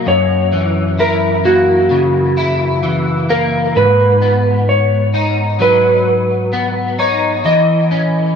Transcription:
0.00 0.52 F#3 medium
0.00 0.55 A#3 medium
0.00 0.15 D#4 medium
0.06 3.75 F#2 medium
0.06 1.02 C#5 loud
0.52 2.82 E3 medium
0.99 2.36 E4 medium
0.99 1.47 A#4 loud
1.45 3.29 A#3 medium
1.45 3.35 F#4 medium
1.91 3.85 C#3 medium
2.37 3.85 E4 medium
2.83 3.85 E3 medium
3.29 4.21 A#3 medium
3.29 3.76 A#4 medium
3.76 7.45 G#2 medium
3.76 4.71 B4 loud
4.22 6.52 B3 medium
4.69 5.63 C#5 loud
5.14 6.98 D#4 medium
5.60 7.54 F#3 medium
5.60 6.99 B4 loud
6.53 7.91 B3 medium
6.99 7.54 D#4 medium
6.99 7.47 C#5 medium
7.45 8.36 E3 medium
7.45 8.36 D#5 loud
7.91 8.36 C#4 medium

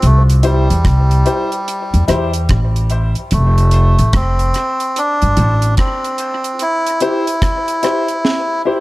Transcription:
0.02 0.66 C2 medium
0.02 0.23 A3 loud
0.02 closed hi-hat medium
0.30 closed hi-hat soft
0.43 2.05 G3 medium
0.43 0.65 E4 loud
0.43 0.65 G4 medium
0.43 0.65 C5 loud
0.43 closed hi-hat medium
0.70 0.84 E2 medium
0.70 closed hi-hat medium
0.85 1.22 C2 loud
0.85 kick loud
0.85 cross-stick loud
0.85 closed hi-hat medium
1.11 closed hi-hat medium
1.25 1.47 E4 medium
1.25 1.47 G4 medium
1.25 1.47 C5 loud
1.25 closed hi-hat medium
1.52 closed hi-hat medium
1.68 closed hi-hat medium
1.94 2.07 E2 medium
1.94 closed hi-hat soft
2.08 2.45 E2 medium
2.08 2.29 E4 loud
2.08 2.29 G4 medium
2.08 2.30 C5 loud
2.08 cross-stick medium
2.08 closed hi-hat medium
2.33 closed hi-hat medium
2.49 3.12 A1 medium
2.49 kick loud
2.49 cross-stick loud
2.49 closed hi-hat medium
2.76 closed hi-hat soft
2.90 3.12 E4 medium
2.90 3.12 G4 medium
2.90 3.12 C5 medium
2.90 closed hi-hat medium
3.15 closed hi-hat soft
3.31 3.95 F1 loud
3.31 4.17 A3 medium
3.31 closed hi-hat medium
3.58 closed hi-hat soft
3.71 3.94 F4 loud
3.71 3.94 A4 medium
3.71 3.94 C5 loud
3.71 closed hi-hat medium
3.99 4.12 A1 medium
3.99 closed hi-hat medium
4.13 4.51 F1 medium
4.13 4.99 C4 medium
4.13 kick loud
4.13 cross-stick loud
4.13 closed hi-hat medium
4.39 closed hi-hat medium
4.54 4.76 F4 medium
4.54 4.76 A4 medium
4.54 4.77 C5 medium
4.54 cross-stick medium
4.54 closed hi-hat medium
4.80 closed hi-hat medium
4.96 5.75 D4 loud
4.96 closed hi-hat medium
5.22 5.36 G1 medium
5.22 closed hi-hat soft
5.36 5.74 A1 loud
5.36 5.58 F4 medium
5.36 5.58 A4 medium
5.36 5.58 C5 medium
5.36 closed hi-hat medium
5.62 closed hi-hat medium
5.77 6.63 C4 medium
5.77 kick loud
5.77 cross-stick loud
5.77 closed hi-hat medium
6.04 closed hi-hat soft
6.18 6.40 F4 medium
6.18 6.40 A4 medium
6.18 6.41 C5 medium
6.18 closed hi-hat medium
6.44 closed hi-hat soft
6.59 7.01 E4 loud
6.59 closed hi-hat medium
6.87 closed hi-hat soft
7.00 7.22 E4 medium
7.00 8.62 E4 medium
7.00 7.23 G4 medium
7.00 7.23 C5 loud
7.00 closed hi-hat medium
7.27 closed hi-hat medium
7.42 kick loud
7.42 cross-stick loud
7.42 closed hi-hat loud
7.68 closed hi-hat medium
7.83 8.04 E4 medium
7.83 8.05 G4 medium
7.83 8.05 C5 loud
7.83 cross-stick medium
7.83 closed hi-hat medium
8.08 closed hi-hat soft
8.25 snare medium
8.65 8.80 E4 medium
8.65 8.80 G4 medium
8.65 8.80 C5 medium

